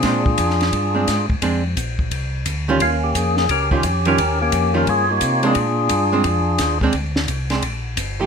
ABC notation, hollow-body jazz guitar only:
X:1
M:4/4
L:1/8
Q:"Swing" 1/4=174
K:Bbmix
V:1 name="Hollow-body jazz guitar"
[A,CD] z4 [A,CD] z2 | [A,CD] z6 [E,G,_DF] | z4 z [E,G,_DF] z [E,G,DF] | z3 [E,G,_DF] z3 [A,C=D] |
z3 [A,CD] z3 [A,CD] | z3 [A,CD] z3 [F,=A,EG] |]